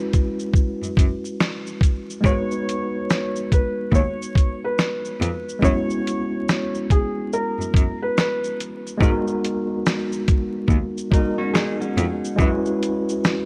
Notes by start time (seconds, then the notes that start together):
Already playing: G#3 C#4 E4 F#4 B4
0.13 kick, closed hi-hat, shaker
0.39 shaker
0.54 kick, shaker
0.82 F#2, shaker
0.97 F#2, kick, closed hi-hat, shaker
1.25 shaker
1.40 snare, shaker
1.67 shaker
1.81 kick, closed hi-hat, shaker
2.10 shaker
2.21 G#2 G#3 B3 D#4, kick
2.25 F#4 B4 C#5, shaker
2.51 shaker
2.69 closed hi-hat, shaker
3.10 snare, shaker
3.36 shaker
3.52 B4, kick, closed hi-hat, shaker
3.92 D#2 C#5, kick, shaker
4.22 shaker
4.35 kick, closed hi-hat, shaker
4.64 B4
4.79 snare, shaker
5.05 shaker
5.21 F2, closed hi-hat, shaker
5.49 shaker
5.59 F#2 G#3 C#4 E4, kick
5.64 B3 F#4 C#5, shaker
5.90 shaker
6.07 closed hi-hat, shaker
6.49 snare, shaker
6.75 shaker
6.90 G#4, kick, closed hi-hat, shaker
7.33 A#4, shaker
7.59 F#2, shaker
7.74 F#2, kick, closed hi-hat, shaker
8.02 B4
8.18 B4, snare, shaker
8.44 shaker
8.60 closed hi-hat, shaker
8.87 shaker
8.98 G#2 G#3 B3 D#4, kick
9.02 F#4 A#4, shaker
9.27 shaker
9.44 closed hi-hat, shaker
9.86 snare, shaker
10.12 shaker
10.28 kick, closed hi-hat, shaker
10.68 D#2, kick, shaker
10.98 shaker
11.10 G#3 A#3 B3 D#4 F#4 A#4, kick, closed hi-hat, shaker
11.38 C#4 F#4
11.54 D#4 G#4, snare, shaker
11.80 C#4 F#4, shaker
11.97 F2, closed hi-hat, shaker
12.25 shaker
12.36 F#2 G#3 C#4 E4, kick, shaker
12.41 F#4 B4
12.65 shaker
12.83 closed hi-hat, shaker
13.09 shaker
13.24 snare, shaker